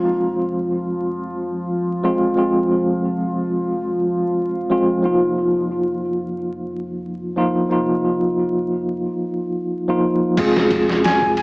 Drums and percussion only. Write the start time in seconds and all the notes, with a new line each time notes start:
10.37 kick, crash, ride
10.56 snare
10.70 kick, ride
10.89 snare
11.04 snare, ride
11.22 kick
11.37 ride